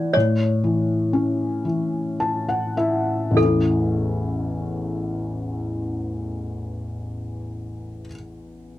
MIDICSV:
0, 0, Header, 1, 3, 480
1, 0, Start_track
1, 0, Key_signature, 3, "major"
1, 0, Tempo, 956938
1, 78, Time_signature, 6, 3, 24, 8
1, 562, Tempo, 1069519
1, 1042, Tempo, 1190476
1, 1522, Tempo, 1252610
1, 3595, End_track
2, 0, Start_track
2, 0, Title_t, "Toy piano"
2, 0, Program_c, 0, 8
2, 0, Note_on_c, 0, 74, 78
2, 68, Note_on_c, 0, 73, 78
2, 77, Note_off_c, 0, 74, 0
2, 1255, Note_off_c, 0, 73, 0
2, 1517, Note_on_c, 0, 69, 60
2, 3316, Note_off_c, 0, 69, 0
2, 3595, End_track
3, 0, Start_track
3, 0, Title_t, "Felt piano"
3, 0, Program_c, 1, 0
3, 0, Control_c, 1, 64, 127
3, 0, Note_on_c, 1, 52, 51
3, 0, Note_on_c, 1, 59, 50
3, 61, Note_off_c, 1, 59, 0
3, 73, Note_off_c, 1, 52, 0
3, 83, Note_on_c, 1, 45, 53
3, 84, Control_c, 1, 64, 0
3, 170, Control_c, 1, 64, 127
3, 320, Note_on_c, 1, 52, 48
3, 567, Note_on_c, 1, 61, 47
3, 793, Note_off_c, 1, 52, 0
3, 800, Note_on_c, 1, 52, 44
3, 1046, Note_on_c, 1, 81, 54
3, 1151, Note_off_c, 1, 81, 0
3, 1161, Note_on_c, 1, 78, 55
3, 1269, Note_off_c, 1, 78, 0
3, 1276, Note_on_c, 1, 76, 58
3, 1278, Note_on_c, 1, 64, 44
3, 1493, Note_on_c, 1, 33, 45
3, 1506, Note_off_c, 1, 76, 0
3, 1506, Note_on_c, 1, 40, 41
3, 1508, Note_off_c, 1, 45, 0
3, 1508, Note_off_c, 1, 52, 0
3, 1508, Note_off_c, 1, 61, 0
3, 1516, Note_off_c, 1, 64, 0
3, 1516, Note_on_c, 1, 52, 44
3, 1526, Control_c, 1, 64, 0
3, 1527, Note_on_c, 1, 57, 39
3, 1539, Note_on_c, 1, 61, 43
3, 1550, Note_on_c, 1, 64, 47
3, 1601, Control_c, 1, 64, 127
3, 3293, Note_off_c, 1, 33, 0
3, 3306, Note_off_c, 1, 40, 0
3, 3315, Note_off_c, 1, 52, 0
3, 3326, Note_off_c, 1, 57, 0
3, 3337, Note_off_c, 1, 61, 0
3, 3349, Note_off_c, 1, 64, 0
3, 3595, End_track
0, 0, End_of_file